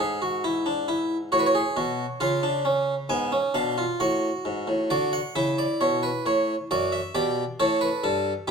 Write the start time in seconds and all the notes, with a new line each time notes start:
0.00 G#2 G#4
0.22 F#4
0.44 E4
0.66 D4
0.88 E4
1.32 A2 F#4 C#5
1.39 B4
1.46 C#5
1.55 G#4
1.77 B2 F#4
2.20 C#3 F4 F5
2.43 D4
2.65 C#4
3.09 G#2 B3 G#5
3.32 C#4
3.54 B2 D4 F5
3.78 F4
4.00 A2 F#4 F#5
4.45 G#2
4.67 A2
4.90 D3 F#4 D5
5.13 F#5
5.36 C#3 E4 E5
5.58 D5
5.81 B2 C#5
6.03 B4
6.26 A2 C#5
6.71 F#2 F#4 D5
6.92 E5
7.15 B2 G4 D5
7.60 A2 A4 C#5
7.81 B4
8.04 G2 A4
8.48 B2 E4 G4